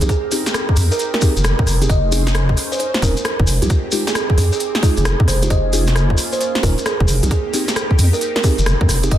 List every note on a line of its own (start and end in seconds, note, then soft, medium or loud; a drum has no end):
0.00 0.08 C2 medium
0.00 1.88 C4 medium
0.00 0.11 C4 medium
0.00 5.46 D#4 medium
0.00 0.11 D#4 medium
0.00 1.88 G4 medium
0.00 0.11 G4 medium
0.00 0.11 G#4 medium
0.00 1.86 A#4 medium
0.00 closed hi-hat medium
0.00 maracas medium
0.09 0.22 G#4 medium
0.09 kick loud
0.09 closed hi-hat medium
0.09 maracas soft
0.32 0.42 C4 medium
0.32 0.42 D#4 medium
0.32 0.42 G4 medium
0.32 0.42 G#4 medium
0.32 open hi-hat loud
0.32 maracas medium
0.46 snare medium
0.46 closed hi-hat medium
0.46 maracas medium
0.54 cross-stick loud
0.54 closed hi-hat medium
0.54 maracas soft
0.69 kick medium
0.76 0.89 F2 loud
0.76 open hi-hat loud
0.76 maracas medium
0.92 0.99 A#4 medium
0.92 maracas medium
0.99 closed hi-hat medium
0.99 maracas soft
1.14 1.44 A#4 medium
1.14 snare medium
1.21 1.32 C4 medium
1.21 1.32 D#4 medium
1.21 1.32 G4 medium
1.21 1.32 G#4 loud
1.21 kick loud
1.21 open hi-hat loud
1.21 maracas loud
1.36 1.55 F1 medium
1.36 closed hi-hat soft
1.36 maracas medium
1.44 cross-stick loud
1.44 closed hi-hat medium
1.44 maracas soft
1.59 1.66 F2 medium
1.59 kick loud
1.67 1.87 F1 medium
1.67 cross-stick medium
1.67 open hi-hat loud
1.67 maracas loud
1.82 1.89 C4 medium
1.82 1.89 D#4 medium
1.82 1.89 G4 medium
1.82 1.89 G#4 medium
1.82 closed hi-hat medium
1.82 maracas medium
1.90 2.55 F1 medium
1.90 3.46 C#4 medium
1.90 7.04 G#4 medium
1.90 3.46 C5 medium
1.90 2.54 D#5 medium
1.90 kick loud
1.90 closed hi-hat medium
1.90 maracas soft
2.12 2.22 C4 medium
2.12 2.22 C#4 medium
2.12 2.22 D#4 medium
2.12 2.22 G#4 medium
2.12 open hi-hat loud
2.12 maracas loud
2.27 snare medium
2.27 closed hi-hat medium
2.27 maracas medium
2.35 cross-stick loud
2.35 closed hi-hat medium
2.35 maracas soft
2.49 kick medium
2.57 open hi-hat loud
2.57 maracas loud
2.72 2.77 C5 medium
2.72 maracas medium
2.79 2.89 C5 medium
2.79 closed hi-hat medium
2.79 maracas soft
2.94 snare medium
3.02 3.15 D#1 medium
3.02 3.13 C4 medium
3.02 3.13 C#4 medium
3.02 3.13 D#4 medium
3.02 3.16 A#4 medium
3.02 3.13 A#4 loud
3.02 kick loud
3.02 open hi-hat loud
3.02 maracas loud
3.17 closed hi-hat soft
3.17 maracas medium
3.25 cross-stick loud
3.25 closed hi-hat medium
3.25 maracas soft
3.40 3.46 F1 medium
3.40 kick loud
3.47 3.60 F1 loud
3.47 5.48 C4 medium
3.47 5.48 G4 medium
3.47 open hi-hat loud
3.47 maracas loud
3.62 3.69 C2 medium
3.62 3.72 G#3 medium
3.62 3.72 D#4 medium
3.62 3.72 F4 medium
3.62 3.72 G4 medium
3.62 closed hi-hat medium
3.62 maracas medium
3.70 kick loud
3.70 closed hi-hat medium
3.70 maracas soft
3.92 4.03 G#3 medium
3.92 4.03 D#4 medium
3.92 4.03 F4 medium
3.92 4.03 G4 medium
3.92 open hi-hat loud
3.92 maracas loud
4.07 4.12 G#4 medium
4.07 snare medium
4.07 closed hi-hat medium
4.07 maracas medium
4.15 4.24 G#4 medium
4.15 cross-stick loud
4.15 closed hi-hat medium
4.15 maracas soft
4.30 kick medium
4.38 4.50 F2 loud
4.38 4.47 G#4 medium
4.38 open hi-hat loud
4.38 maracas medium
4.52 4.57 G#4 medium
4.52 maracas medium
4.60 closed hi-hat medium
4.60 maracas soft
4.75 snare medium
4.83 4.93 G#3 medium
4.83 4.93 D#4 medium
4.83 4.93 F4 medium
4.83 4.93 G#4 loud
4.83 4.92 G#4 medium
4.83 kick loud
4.83 open hi-hat loud
4.83 maracas loud
4.97 5.15 F1 medium
4.97 5.02 G#4 medium
4.97 closed hi-hat soft
4.97 maracas soft
5.05 cross-stick loud
5.05 closed hi-hat medium
5.05 maracas soft
5.20 5.27 F2 medium
5.20 kick loud
5.28 5.48 F1 medium
5.28 5.37 C5 medium
5.28 cross-stick medium
5.28 open hi-hat loud
5.28 maracas medium
5.42 5.50 G#3 medium
5.42 5.50 D#4 medium
5.42 5.50 F4 medium
5.42 5.50 G4 medium
5.42 5.48 C5 medium
5.42 closed hi-hat medium
5.42 maracas medium
5.50 6.16 F1 loud
5.50 9.08 A#3 medium
5.50 7.07 C#4 medium
5.50 7.07 F4 medium
5.50 6.15 D#5 medium
5.50 kick loud
5.50 closed hi-hat medium
5.50 maracas soft
5.73 5.83 C#4 medium
5.73 5.83 D#4 medium
5.73 5.83 F4 medium
5.73 5.83 G#4 medium
5.73 open hi-hat loud
5.73 maracas medium
5.87 snare medium
5.87 closed hi-hat medium
5.87 maracas soft
5.96 cross-stick loud
5.96 closed hi-hat medium
5.96 maracas soft
6.10 kick medium
6.17 open hi-hat loud
6.17 maracas medium
6.32 6.38 C5 medium
6.32 maracas medium
6.41 6.50 C5 medium
6.41 closed hi-hat medium
6.41 maracas soft
6.55 snare medium
6.63 6.76 D#1 medium
6.63 6.73 C#4 medium
6.63 6.73 D#4 medium
6.63 6.73 F4 medium
6.63 6.76 A#4 medium
6.63 6.73 A#4 loud
6.63 kick loud
6.63 open hi-hat loud
6.63 maracas medium
6.78 closed hi-hat soft
6.78 maracas medium
6.86 7.14 G#4 medium
6.86 cross-stick loud
6.86 closed hi-hat medium
6.86 maracas soft
7.00 7.07 F1 medium
7.00 kick loud
7.08 7.21 F1 loud
7.08 9.18 C4 medium
7.08 9.09 D#4 medium
7.08 9.09 G4 medium
7.08 open hi-hat loud
7.08 maracas medium
7.23 7.30 C2 medium
7.23 7.33 C4 medium
7.23 7.33 D#4 medium
7.23 7.33 G4 medium
7.23 7.33 G#4 medium
7.23 closed hi-hat medium
7.23 maracas medium
7.31 7.44 G#4 medium
7.31 kick loud
7.31 closed hi-hat medium
7.31 maracas soft
7.54 7.64 C4 medium
7.54 7.64 D#4 medium
7.54 7.64 G4 medium
7.54 7.64 G#4 medium
7.54 open hi-hat loud
7.54 maracas medium
7.68 snare medium
7.68 closed hi-hat medium
7.68 maracas medium
7.76 cross-stick loud
7.76 closed hi-hat medium
7.76 maracas soft
7.91 kick medium
7.99 8.11 F2 loud
7.99 open hi-hat loud
7.99 maracas medium
8.13 8.20 A#4 medium
8.13 maracas medium
8.21 closed hi-hat medium
8.21 maracas soft
8.36 8.66 A#4 loud
8.36 snare medium
8.44 8.54 C4 medium
8.44 8.54 D#4 medium
8.44 8.54 G4 medium
8.44 8.54 G#4 loud
8.44 kick loud
8.44 open hi-hat loud
8.44 maracas medium
8.58 8.76 F1 medium
8.58 closed hi-hat soft
8.58 maracas medium
8.66 cross-stick loud
8.66 closed hi-hat medium
8.66 maracas soft
8.81 8.88 F2 medium
8.81 kick loud
8.89 9.09 F1 medium
8.89 cross-stick medium
8.89 open hi-hat loud
8.89 maracas medium
9.03 9.11 C4 medium
9.03 9.11 D#4 medium
9.03 9.11 G4 medium
9.03 9.11 G#4 medium
9.03 closed hi-hat medium
9.03 maracas soft
9.11 9.18 F1 loud
9.11 9.18 C#4 medium
9.11 9.18 D#4 medium
9.11 9.18 G#4 medium
9.11 9.18 D#5 medium
9.11 kick loud
9.11 closed hi-hat medium
9.11 maracas soft